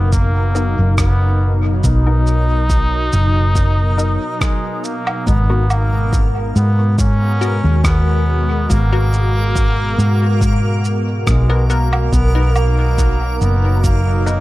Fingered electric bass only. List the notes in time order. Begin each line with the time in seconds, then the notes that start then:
Already playing: F#1
0.79 F#1
1.84 B1
3.13 F#1
5.27 G#1
6.56 G#2
7.64 D#2
8.70 G#1
9.99 G#2
11.27 B1
12.13 B1
13.41 F#1